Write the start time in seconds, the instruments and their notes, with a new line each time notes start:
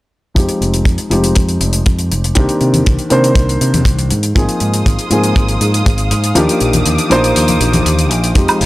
0.35 fingered electric bass F2, grand piano F3 G#3 C4 D#4 G4, kick, closed hi-hat
0.49 closed hi-hat
0.61 fingered electric bass F1, closed hi-hat
0.74 closed hi-hat
0.85 fingered electric bass F2, kick, closed hi-hat
0.98 closed hi-hat
1.10 fingered electric bass F1, grand piano F3 G#3 C4 D#4 G4, closed hi-hat
1.24 closed hi-hat
1.35 fingered electric bass F2, kick, closed hi-hat
1.49 closed hi-hat
1.61 fingered electric bass F1, closed hi-hat
1.73 closed hi-hat
1.86 fingered electric bass F2, kick, closed hi-hat
1.99 closed hi-hat
2.11 fingered electric bass F1, closed hi-hat
2.24 closed hi-hat
2.35 fingered electric bass C2, grand piano D#3 A#3 C4 D4 G4, kick, closed hi-hat
2.49 closed hi-hat
2.61 fingered electric bass C3, closed hi-hat
2.74 closed hi-hat, high conga
2.86 fingered electric bass C2, kick, closed hi-hat
2.99 closed hi-hat
3.10 fingered electric bass C3, grand piano D#3 A#3 C4 D4 C5, closed hi-hat
3.24 closed hi-hat
3.35 fingered electric bass C2, kick, closed hi-hat
3.49 closed hi-hat
3.61 fingered electric bass C3, closed hi-hat
3.74 closed hi-hat, high conga
3.85 fingered electric bass C2, kick, closed hi-hat
3.99 closed hi-hat
4.11 fingered electric bass G#2, closed hi-hat
4.23 closed hi-hat
4.35 fingered electric bass G#1, grand piano F3 A#3 C4 D#4 G#4, string section G#4 F5 C6 D#6, kick, closed hi-hat
4.49 closed hi-hat
4.60 fingered electric bass G#2, closed hi-hat
4.74 closed hi-hat
4.86 fingered electric bass G#1, kick, closed hi-hat
4.99 closed hi-hat
5.10 fingered electric bass G#2, grand piano F3 A#3 C4 D#4 G#4, closed hi-hat
5.24 closed hi-hat
5.36 fingered electric bass G#1, kick, closed hi-hat
5.49 closed hi-hat
5.61 fingered electric bass G#2, closed hi-hat
5.74 closed hi-hat
5.86 fingered electric bass G#1, kick, closed hi-hat
5.98 closed hi-hat
6.11 fingered electric bass G#2, closed hi-hat
6.24 closed hi-hat
6.35 fingered electric bass D#2, grand piano F3 A#3 D4 D#4 G4, string section G4 D6 D#6, closed hi-hat
6.49 closed hi-hat
6.60 fingered electric bass A#1, closed hi-hat
6.73 closed hi-hat, high conga
6.86 fingered electric bass D#2, closed hi-hat
6.98 closed hi-hat
7.10 fingered electric bass A#1, grand piano F3 A#3 D4 D#4 C5, closed hi-hat
7.24 closed hi-hat
7.36 fingered electric bass D#2, closed hi-hat
7.48 closed hi-hat, high conga
7.61 fingered electric bass A#1, closed hi-hat
7.73 closed hi-hat, high conga
7.86 fingered electric bass D#2, closed hi-hat
7.99 closed hi-hat
8.11 fingered electric bass A#1, closed hi-hat
8.24 closed hi-hat
8.35 fingered electric bass F2, grand piano F3 G#3 C4 D#4 G4, string section G#3 F5 C6 D#6, kick, closed hi-hat
8.48 closed hi-hat, high woodblock
8.61 fingered electric bass F1, open hi-hat